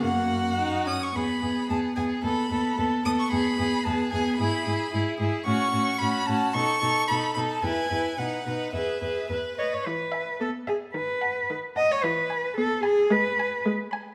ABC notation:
X:1
M:2/4
L:1/16
Q:1/4=111
K:F#
V:1 name="Violin"
f6 d' c' | [K:E] b4 a2 g2 | b4 z2 d' c' | b4 a2 g2 |
b4 z4 | c'4 b2 a2 | c'4 b2 b a | g4 f4 |
e4 z4 | z2 g2 z2 g2 | z2 a2 z2 a2 | z2 b2 z2 b2 |
z2 b2 z2 b2 |]
V:2 name="Violin"
F6 z2 | [K:E] G2 G2 G2 G2 | A2 A2 A2 A2 | G2 G2 G2 G2 |
G2 G2 G2 G2 | F2 F2 F2 F2 | A2 A2 A2 A2 | B2 B2 B2 B2 |
B2 B2 B2 B2 | z2 e2 z2 e2 | z2 f2 z2 f2 | z2 g2 z2 g2 |
z2 g2 z2 g2 |]
V:3 name="Viola"
A,4 D2 C2 | [K:E] B,2 B,2 B,2 B,2 | B,2 B,2 B,2 B,2 | B,2 B,2 B,2 B,2 |
E2 E2 E2 E2 | C2 C2 C2 C2 | D2 D2 D2 D2 | E2 E2 D2 D2 |
G2 G2 B2 c2 | E,4 B,4 | D,4 D,4 | E,4 B,4 |
G,4 G,4 |]
V:4 name="Cello" clef=bass
F,,6 z2 | [K:E] E,,2 E,,2 E,,2 E,,2 | D,,2 D,,2 D,,2 D,,2 | E,,2 E,,2 E,,2 E,,2 |
G,,2 G,,2 G,,2 G,,2 | A,,2 A,,2 A,,2 A,,2 | B,,2 B,,2 B,,2 B,,2 | E,,2 E,,2 B,,2 B,,2 |
E,,2 E,,2 E,,2 d c | B4 A2 G2 | B4 z2 d c | B4 A2 G2 |
B4 z4 |]